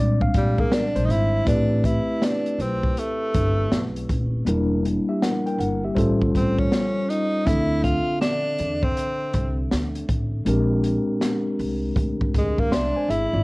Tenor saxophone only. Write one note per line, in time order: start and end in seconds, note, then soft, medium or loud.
0.37 0.61 G3 medium
0.60 0.75 A#3 medium
0.73 1.06 D4 loud
1.05 1.13 D#4 medium
1.11 1.47 E4 loud
1.48 1.87 D4 loud
1.86 2.26 E4 medium
2.25 2.63 D4 medium
2.61 3.01 C4 medium
2.99 4.10 A3 medium
6.36 6.60 C4 medium
6.59 7.10 C#4 medium
7.09 7.47 D#4 loud
7.46 7.84 E4 loud
7.83 8.20 F4 loud
8.21 8.85 D4 loud
8.84 9.59 C4 medium
12.38 12.61 G#3 medium
12.60 12.76 A#3 medium
12.74 13.12 D4 loud
13.10 13.44 E4 loud